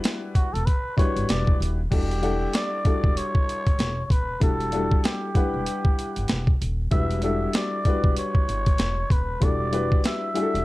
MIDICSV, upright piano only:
0, 0, Header, 1, 2, 480
1, 0, Start_track
1, 0, Tempo, 625000
1, 1473, Time_signature, 4, 2, 24, 8
1, 8178, End_track
2, 0, Start_track
2, 0, Title_t, "Upright piano"
2, 0, Program_c, 0, 0
2, 0, Note_on_c, 0, 55, 83
2, 0, Note_on_c, 0, 62, 83
2, 0, Note_on_c, 0, 64, 78
2, 0, Note_on_c, 0, 66, 81
2, 0, Note_on_c, 0, 71, 97
2, 336, Note_off_c, 0, 55, 0
2, 337, Note_off_c, 0, 62, 0
2, 340, Note_off_c, 0, 64, 0
2, 341, Note_off_c, 0, 66, 0
2, 344, Note_off_c, 0, 71, 0
2, 742, Note_on_c, 0, 55, 72
2, 743, Note_on_c, 0, 62, 68
2, 750, Note_on_c, 0, 64, 70
2, 752, Note_on_c, 0, 66, 67
2, 759, Note_on_c, 0, 71, 85
2, 1352, Note_off_c, 0, 55, 0
2, 1352, Note_off_c, 0, 62, 0
2, 1356, Note_off_c, 0, 64, 0
2, 1357, Note_off_c, 0, 66, 0
2, 1360, Note_off_c, 0, 71, 0
2, 1465, Note_on_c, 0, 55, 67
2, 1469, Note_on_c, 0, 62, 64
2, 1471, Note_on_c, 0, 64, 58
2, 1477, Note_on_c, 0, 66, 61
2, 1480, Note_on_c, 0, 69, 73
2, 1672, Note_off_c, 0, 55, 0
2, 1675, Note_off_c, 0, 62, 0
2, 1676, Note_off_c, 0, 64, 0
2, 1679, Note_off_c, 0, 66, 0
2, 1680, Note_off_c, 0, 69, 0
2, 1701, Note_on_c, 0, 55, 69
2, 1705, Note_on_c, 0, 62, 71
2, 1711, Note_on_c, 0, 64, 68
2, 1712, Note_on_c, 0, 78, 65
2, 1718, Note_on_c, 0, 69, 83
2, 2114, Note_off_c, 0, 55, 0
2, 2116, Note_off_c, 0, 62, 0
2, 2119, Note_off_c, 0, 64, 0
2, 2120, Note_off_c, 0, 78, 0
2, 2123, Note_off_c, 0, 69, 0
2, 2184, Note_on_c, 0, 55, 67
2, 2185, Note_on_c, 0, 62, 63
2, 2190, Note_on_c, 0, 64, 63
2, 2193, Note_on_c, 0, 66, 68
2, 2198, Note_on_c, 0, 69, 82
2, 2978, Note_off_c, 0, 55, 0
2, 2979, Note_off_c, 0, 62, 0
2, 2982, Note_off_c, 0, 64, 0
2, 2983, Note_off_c, 0, 66, 0
2, 2986, Note_off_c, 0, 69, 0
2, 3380, Note_on_c, 0, 55, 73
2, 3384, Note_on_c, 0, 62, 62
2, 3387, Note_on_c, 0, 64, 65
2, 3393, Note_on_c, 0, 66, 62
2, 3396, Note_on_c, 0, 69, 72
2, 3590, Note_off_c, 0, 55, 0
2, 3592, Note_off_c, 0, 62, 0
2, 3593, Note_off_c, 0, 64, 0
2, 3597, Note_off_c, 0, 66, 0
2, 3598, Note_off_c, 0, 69, 0
2, 3625, Note_on_c, 0, 55, 76
2, 3629, Note_on_c, 0, 62, 70
2, 3631, Note_on_c, 0, 64, 62
2, 3637, Note_on_c, 0, 66, 68
2, 3641, Note_on_c, 0, 69, 86
2, 4036, Note_off_c, 0, 55, 0
2, 4038, Note_off_c, 0, 62, 0
2, 4039, Note_off_c, 0, 64, 0
2, 4042, Note_off_c, 0, 66, 0
2, 4044, Note_off_c, 0, 69, 0
2, 4103, Note_on_c, 0, 55, 70
2, 4105, Note_on_c, 0, 62, 66
2, 4111, Note_on_c, 0, 64, 67
2, 4117, Note_on_c, 0, 78, 64
2, 4120, Note_on_c, 0, 71, 81
2, 4898, Note_off_c, 0, 55, 0
2, 4899, Note_off_c, 0, 62, 0
2, 4902, Note_off_c, 0, 64, 0
2, 4905, Note_off_c, 0, 78, 0
2, 4907, Note_off_c, 0, 71, 0
2, 5306, Note_on_c, 0, 55, 73
2, 5311, Note_on_c, 0, 62, 65
2, 5315, Note_on_c, 0, 64, 64
2, 5320, Note_on_c, 0, 66, 63
2, 5325, Note_on_c, 0, 71, 74
2, 5513, Note_off_c, 0, 55, 0
2, 5515, Note_off_c, 0, 62, 0
2, 5517, Note_off_c, 0, 64, 0
2, 5520, Note_off_c, 0, 66, 0
2, 5522, Note_off_c, 0, 71, 0
2, 5548, Note_on_c, 0, 55, 76
2, 5552, Note_on_c, 0, 62, 70
2, 5555, Note_on_c, 0, 64, 68
2, 5560, Note_on_c, 0, 66, 71
2, 5563, Note_on_c, 0, 69, 79
2, 5957, Note_off_c, 0, 55, 0
2, 5960, Note_off_c, 0, 62, 0
2, 5961, Note_off_c, 0, 64, 0
2, 5963, Note_off_c, 0, 66, 0
2, 5965, Note_off_c, 0, 69, 0
2, 6030, Note_on_c, 0, 55, 75
2, 6035, Note_on_c, 0, 62, 64
2, 6039, Note_on_c, 0, 64, 67
2, 6046, Note_on_c, 0, 66, 66
2, 6049, Note_on_c, 0, 71, 81
2, 6822, Note_off_c, 0, 55, 0
2, 6824, Note_off_c, 0, 62, 0
2, 6826, Note_off_c, 0, 64, 0
2, 6829, Note_off_c, 0, 66, 0
2, 6831, Note_off_c, 0, 71, 0
2, 7221, Note_on_c, 0, 55, 69
2, 7226, Note_on_c, 0, 62, 65
2, 7230, Note_on_c, 0, 64, 62
2, 7235, Note_on_c, 0, 66, 68
2, 7237, Note_on_c, 0, 69, 76
2, 7430, Note_off_c, 0, 55, 0
2, 7433, Note_off_c, 0, 62, 0
2, 7435, Note_off_c, 0, 64, 0
2, 7438, Note_off_c, 0, 66, 0
2, 7438, Note_off_c, 0, 69, 0
2, 7464, Note_on_c, 0, 55, 74
2, 7469, Note_on_c, 0, 62, 65
2, 7471, Note_on_c, 0, 64, 66
2, 7476, Note_on_c, 0, 66, 66
2, 7480, Note_on_c, 0, 71, 84
2, 7876, Note_off_c, 0, 55, 0
2, 7878, Note_off_c, 0, 62, 0
2, 7879, Note_off_c, 0, 64, 0
2, 7882, Note_off_c, 0, 66, 0
2, 7883, Note_off_c, 0, 71, 0
2, 7942, Note_on_c, 0, 55, 69
2, 7947, Note_on_c, 0, 62, 65
2, 7949, Note_on_c, 0, 64, 70
2, 7953, Note_on_c, 0, 66, 65
2, 7958, Note_on_c, 0, 68, 65
2, 8006, Note_on_c, 0, 69, 79
2, 8015, Note_off_c, 0, 68, 0
2, 8178, Note_off_c, 0, 55, 0
2, 8178, Note_off_c, 0, 62, 0
2, 8178, Note_off_c, 0, 64, 0
2, 8178, Note_off_c, 0, 66, 0
2, 8178, Note_off_c, 0, 69, 0
2, 8178, End_track
0, 0, End_of_file